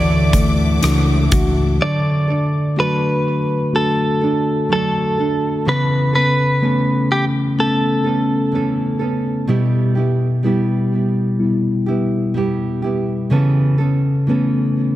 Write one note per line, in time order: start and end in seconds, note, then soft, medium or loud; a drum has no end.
0.00 0.79 D2 medium
0.00 0.84 D3 medium
0.00 0.80 E3 medium
0.00 1.77 E3 medium
0.00 0.82 A3 medium
0.00 0.82 E4 medium
0.00 0.84 F#4 medium
0.00 1.77 A4 medium
0.00 0.79 D5 medium
0.00 1.77 E5 medium
0.00 1.76 F#5 medium
0.00 1.78 D6 medium
0.33 1.77 A3 soft
0.33 kick medium
0.33 closed hi-hat medium
0.79 1.28 C#2 medium
0.79 1.31 E3 soft
0.79 1.32 A3 medium
0.79 1.77 D4 soft
0.79 1.29 C#5 medium
0.79 closed hi-hat medium
0.84 1.32 E4 soft
0.84 1.30 F#4 medium
0.84 cross-stick loud
1.31 1.77 C#2 medium
1.31 1.80 A3 soft
1.31 1.81 E4 soft
1.31 1.80 F#4 soft
1.31 1.79 F#4 soft
1.31 kick medium
1.31 closed hi-hat medium
1.80 2.29 D3 soft
1.80 5.62 D3 soft
1.80 2.29 F#3 medium
1.80 2.29 A3 medium
1.80 2.28 D4 medium
1.80 2.27 A4 medium
1.80 2.79 D5 medium
2.28 2.76 A3 soft
2.28 2.77 D4 soft
2.28 2.77 A4 soft
2.76 4.21 F#3 soft
2.76 3.71 A3 soft
2.76 4.24 A3 soft
2.76 3.71 D4 soft
2.76 4.22 D4 soft
2.76 3.71 F#4 soft
2.76 4.21 A4 soft
2.76 3.75 B4 medium
3.73 4.67 A3 soft
3.73 4.67 D4 soft
3.73 4.67 F#4 soft
3.73 4.71 A4 medium
4.21 4.69 A3 soft
4.21 4.70 D4 soft
4.21 4.70 A4 soft
4.69 5.18 F#3 soft
4.69 5.18 A3 soft
4.69 5.18 D4 soft
4.69 5.69 A4 medium
4.69 5.16 A4 soft
5.18 5.66 A3 soft
5.18 5.67 D4 soft
5.18 5.66 A4 soft
5.65 6.14 C#3 medium
5.65 9.44 C#3 medium
5.65 6.14 E3 medium
5.65 6.14 B3 medium
5.65 6.14 C#4 medium
5.65 6.12 A4 medium
5.65 6.14 B4 medium
6.13 6.61 B3 soft
6.13 6.62 C#4 soft
6.13 6.61 A4 soft
6.13 7.11 B4 medium
6.61 8.51 E3 soft
6.61 7.54 A3 soft
6.61 8.07 B3 soft
6.61 7.55 B3 soft
6.61 8.05 C#4 soft
6.61 7.55 C#4 soft
6.61 8.03 A4 soft
7.12 7.24 G4 medium
7.58 8.50 A3 soft
7.58 8.50 B3 soft
7.58 8.50 C#4 soft
7.58 8.97 A4 medium
8.04 8.52 B3 soft
8.04 8.53 C#4 soft
8.04 8.52 A4 soft
8.52 9.00 E3 soft
8.52 9.00 B3 soft
8.52 9.00 C#4 soft
8.52 8.98 A4 soft
8.99 9.47 B3 soft
8.99 9.48 C#4 soft
8.99 9.47 A4 soft
9.47 9.95 B2 medium
9.47 13.27 B2 soft
9.47 9.96 G3 medium
9.47 9.96 B3 medium
9.47 9.96 E4 medium
9.47 9.94 G4 medium
9.95 10.43 B3 soft
9.95 10.44 E4 soft
9.95 10.43 G4 soft
10.43 11.87 G3 soft
10.43 11.36 G3 soft
10.43 11.89 B3 soft
10.43 11.37 B3 soft
10.43 11.37 E4 soft
10.43 11.88 E4 medium
10.43 11.85 G4 medium
11.39 12.32 G3 soft
11.39 12.32 B3 soft
11.39 12.32 E4 soft
11.86 12.34 B3 soft
11.86 12.35 E4 soft
11.86 12.34 G4 soft
12.34 12.82 G3 soft
12.34 12.83 B3 soft
12.34 12.83 E4 soft
12.34 12.81 G4 medium
12.82 13.30 B3 soft
12.82 13.31 E4 soft
12.82 13.30 G4 soft
13.30 13.78 C#3 medium
13.30 14.96 C#3 soft
13.30 13.79 E3 medium
13.30 13.79 B3 medium
13.30 13.79 C#4 medium
13.30 13.77 A4 medium
13.78 14.27 B3 soft
13.78 14.28 C#4 soft
13.78 14.27 A4 soft
14.27 14.96 E3 soft
14.27 14.96 A3 soft
14.27 14.96 B3 soft
14.27 14.96 C#4 soft
14.27 14.96 C#4 medium
14.27 14.96 A4 soft